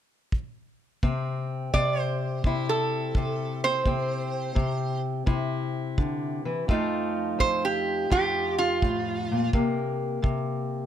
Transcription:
0, 0, Header, 1, 4, 480
1, 0, Start_track
1, 0, Tempo, 708383
1, 692, Time_signature, 4, 2, 24, 8
1, 7359, End_track
2, 0, Start_track
2, 0, Title_t, "Resonator guitar played with a steel bar"
2, 0, Program_c, 0, 25
2, 1176, Note_on_c, 0, 74, 73
2, 1347, Note_off_c, 0, 74, 0
2, 1347, Note_on_c, 0, 72, 72
2, 1805, Note_off_c, 0, 72, 0
2, 1825, Note_on_c, 0, 69, 68
2, 2440, Note_off_c, 0, 69, 0
2, 2466, Note_on_c, 0, 72, 79
2, 3393, Note_off_c, 0, 72, 0
2, 5015, Note_on_c, 0, 72, 86
2, 5170, Note_off_c, 0, 72, 0
2, 5182, Note_on_c, 0, 67, 74
2, 5488, Note_off_c, 0, 67, 0
2, 5504, Note_on_c, 0, 67, 83
2, 5809, Note_off_c, 0, 67, 0
2, 5817, Note_on_c, 0, 65, 84
2, 6436, Note_off_c, 0, 65, 0
2, 7359, End_track
3, 0, Start_track
3, 0, Title_t, "Steel-string acoustic guitar"
3, 0, Program_c, 1, 25
3, 697, Note_on_c, 1, 48, 69
3, 700, Note_on_c, 1, 60, 55
3, 1175, Note_off_c, 1, 48, 0
3, 1178, Note_on_c, 1, 48, 70
3, 1659, Note_off_c, 1, 48, 0
3, 1662, Note_on_c, 1, 48, 70
3, 1670, Note_on_c, 1, 64, 66
3, 2134, Note_off_c, 1, 48, 0
3, 2142, Note_on_c, 1, 48, 65
3, 2464, Note_off_c, 1, 60, 0
3, 2467, Note_on_c, 1, 60, 58
3, 2598, Note_off_c, 1, 48, 0
3, 2615, Note_off_c, 1, 60, 0
3, 2615, Note_on_c, 1, 48, 68
3, 2618, Note_on_c, 1, 60, 61
3, 3076, Note_off_c, 1, 48, 0
3, 3084, Note_on_c, 1, 48, 74
3, 3558, Note_off_c, 1, 48, 0
3, 3561, Note_off_c, 1, 64, 0
3, 3566, Note_on_c, 1, 48, 73
3, 3569, Note_on_c, 1, 64, 66
3, 4053, Note_on_c, 1, 50, 55
3, 4370, Note_off_c, 1, 50, 0
3, 4373, Note_on_c, 1, 52, 61
3, 4511, Note_off_c, 1, 48, 0
3, 4526, Note_on_c, 1, 41, 72
3, 4529, Note_off_c, 1, 52, 0
3, 4531, Note_off_c, 1, 64, 0
3, 4532, Note_on_c, 1, 53, 55
3, 4535, Note_on_c, 1, 57, 62
3, 4538, Note_off_c, 1, 60, 0
3, 4541, Note_on_c, 1, 63, 61
3, 4544, Note_on_c, 1, 65, 66
3, 4997, Note_off_c, 1, 41, 0
3, 5005, Note_on_c, 1, 41, 73
3, 5482, Note_off_c, 1, 41, 0
3, 5489, Note_off_c, 1, 65, 0
3, 5490, Note_on_c, 1, 41, 72
3, 5497, Note_on_c, 1, 65, 66
3, 5979, Note_on_c, 1, 45, 52
3, 6298, Note_off_c, 1, 45, 0
3, 6311, Note_on_c, 1, 46, 61
3, 6433, Note_off_c, 1, 41, 0
3, 6433, Note_off_c, 1, 53, 0
3, 6436, Note_off_c, 1, 57, 0
3, 6436, Note_off_c, 1, 65, 0
3, 6439, Note_off_c, 1, 63, 0
3, 6460, Note_off_c, 1, 46, 0
3, 6463, Note_on_c, 1, 48, 73
3, 6466, Note_on_c, 1, 58, 60
3, 6919, Note_off_c, 1, 48, 0
3, 6928, Note_on_c, 1, 48, 69
3, 7359, Note_off_c, 1, 48, 0
3, 7359, Note_off_c, 1, 58, 0
3, 7359, End_track
4, 0, Start_track
4, 0, Title_t, "Drums"
4, 219, Note_on_c, 9, 36, 55
4, 287, Note_off_c, 9, 36, 0
4, 697, Note_on_c, 9, 36, 58
4, 765, Note_off_c, 9, 36, 0
4, 1177, Note_on_c, 9, 36, 60
4, 1245, Note_off_c, 9, 36, 0
4, 1654, Note_on_c, 9, 36, 62
4, 1722, Note_off_c, 9, 36, 0
4, 2133, Note_on_c, 9, 36, 62
4, 2201, Note_off_c, 9, 36, 0
4, 2612, Note_on_c, 9, 36, 57
4, 2680, Note_off_c, 9, 36, 0
4, 3092, Note_on_c, 9, 36, 60
4, 3160, Note_off_c, 9, 36, 0
4, 3571, Note_on_c, 9, 36, 62
4, 3639, Note_off_c, 9, 36, 0
4, 4051, Note_on_c, 9, 36, 57
4, 4119, Note_off_c, 9, 36, 0
4, 4532, Note_on_c, 9, 36, 63
4, 4600, Note_off_c, 9, 36, 0
4, 5015, Note_on_c, 9, 36, 55
4, 5082, Note_off_c, 9, 36, 0
4, 5499, Note_on_c, 9, 36, 67
4, 5567, Note_off_c, 9, 36, 0
4, 5979, Note_on_c, 9, 36, 63
4, 6047, Note_off_c, 9, 36, 0
4, 6460, Note_on_c, 9, 36, 63
4, 6528, Note_off_c, 9, 36, 0
4, 6937, Note_on_c, 9, 36, 61
4, 7005, Note_off_c, 9, 36, 0
4, 7359, End_track
0, 0, End_of_file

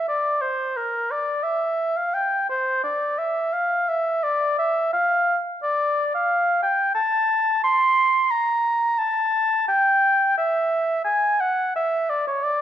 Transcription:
0, 0, Header, 1, 2, 480
1, 0, Start_track
1, 0, Tempo, 694444
1, 42, Time_signature, 4, 2, 24, 8
1, 3881, Tempo, 671892
1, 6281, Tempo, 692042
1, 8806, End_track
2, 0, Start_track
2, 0, Title_t, "Oboe"
2, 0, Program_c, 0, 68
2, 57, Note_on_c, 0, 74, 55
2, 287, Note_on_c, 0, 72, 52
2, 297, Note_off_c, 0, 74, 0
2, 528, Note_on_c, 0, 70, 52
2, 538, Note_off_c, 0, 72, 0
2, 767, Note_on_c, 0, 74, 55
2, 778, Note_off_c, 0, 70, 0
2, 991, Note_on_c, 0, 76, 62
2, 1001, Note_off_c, 0, 74, 0
2, 1362, Note_on_c, 0, 77, 55
2, 1373, Note_off_c, 0, 76, 0
2, 1481, Note_on_c, 0, 79, 62
2, 1492, Note_off_c, 0, 77, 0
2, 1721, Note_off_c, 0, 79, 0
2, 1725, Note_on_c, 0, 72, 58
2, 1957, Note_off_c, 0, 72, 0
2, 1961, Note_on_c, 0, 74, 53
2, 2201, Note_on_c, 0, 76, 57
2, 2211, Note_off_c, 0, 74, 0
2, 2440, Note_on_c, 0, 77, 61
2, 2451, Note_off_c, 0, 76, 0
2, 2687, Note_on_c, 0, 76, 58
2, 2697, Note_off_c, 0, 77, 0
2, 2927, Note_on_c, 0, 74, 61
2, 2937, Note_off_c, 0, 76, 0
2, 3165, Note_off_c, 0, 74, 0
2, 3169, Note_on_c, 0, 76, 61
2, 3402, Note_off_c, 0, 76, 0
2, 3408, Note_on_c, 0, 77, 69
2, 3710, Note_off_c, 0, 77, 0
2, 3890, Note_on_c, 0, 74, 65
2, 4226, Note_off_c, 0, 74, 0
2, 4260, Note_on_c, 0, 77, 64
2, 4599, Note_off_c, 0, 77, 0
2, 4603, Note_on_c, 0, 79, 64
2, 4830, Note_off_c, 0, 79, 0
2, 4834, Note_on_c, 0, 81, 79
2, 5305, Note_off_c, 0, 81, 0
2, 5326, Note_on_c, 0, 84, 90
2, 5806, Note_on_c, 0, 82, 70
2, 5816, Note_off_c, 0, 84, 0
2, 6290, Note_on_c, 0, 81, 82
2, 6301, Note_off_c, 0, 82, 0
2, 6769, Note_off_c, 0, 81, 0
2, 6773, Note_on_c, 0, 79, 81
2, 7233, Note_off_c, 0, 79, 0
2, 7257, Note_on_c, 0, 76, 69
2, 7709, Note_off_c, 0, 76, 0
2, 7716, Note_on_c, 0, 80, 72
2, 7966, Note_on_c, 0, 78, 70
2, 7976, Note_off_c, 0, 80, 0
2, 8205, Note_off_c, 0, 78, 0
2, 8213, Note_on_c, 0, 76, 63
2, 8447, Note_on_c, 0, 74, 60
2, 8458, Note_off_c, 0, 76, 0
2, 8562, Note_off_c, 0, 74, 0
2, 8569, Note_on_c, 0, 73, 57
2, 8682, Note_on_c, 0, 74, 66
2, 8693, Note_off_c, 0, 73, 0
2, 8806, Note_off_c, 0, 74, 0
2, 8806, End_track
0, 0, End_of_file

